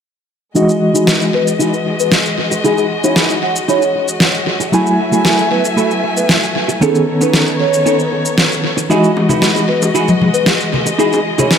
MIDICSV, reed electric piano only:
0, 0, Header, 1, 2, 480
1, 0, Start_track
1, 0, Key_signature, 4, "major"
1, 0, Tempo, 521739
1, 512, Time_signature, 4, 2, 24, 8
1, 10656, End_track
2, 0, Start_track
2, 0, Title_t, "Reed electric piano"
2, 0, Program_c, 0, 4
2, 504, Note_on_c, 0, 52, 66
2, 509, Note_on_c, 0, 56, 60
2, 515, Note_on_c, 0, 75, 61
2, 522, Note_on_c, 0, 66, 73
2, 4319, Note_off_c, 0, 52, 0
2, 4322, Note_off_c, 0, 56, 0
2, 4325, Note_off_c, 0, 75, 0
2, 4328, Note_off_c, 0, 66, 0
2, 4345, Note_on_c, 0, 54, 68
2, 4351, Note_on_c, 0, 57, 62
2, 4357, Note_on_c, 0, 64, 63
2, 4364, Note_on_c, 0, 80, 74
2, 6240, Note_off_c, 0, 54, 0
2, 6243, Note_off_c, 0, 57, 0
2, 6246, Note_off_c, 0, 64, 0
2, 6250, Note_off_c, 0, 80, 0
2, 6264, Note_on_c, 0, 51, 68
2, 6270, Note_on_c, 0, 59, 61
2, 6276, Note_on_c, 0, 61, 63
2, 6282, Note_on_c, 0, 69, 76
2, 8159, Note_off_c, 0, 51, 0
2, 8163, Note_off_c, 0, 59, 0
2, 8165, Note_off_c, 0, 61, 0
2, 8169, Note_off_c, 0, 69, 0
2, 8184, Note_on_c, 0, 52, 68
2, 8189, Note_on_c, 0, 56, 61
2, 8195, Note_on_c, 0, 75, 62
2, 8201, Note_on_c, 0, 66, 76
2, 10656, Note_off_c, 0, 52, 0
2, 10656, Note_off_c, 0, 56, 0
2, 10656, Note_off_c, 0, 66, 0
2, 10656, Note_off_c, 0, 75, 0
2, 10656, End_track
0, 0, End_of_file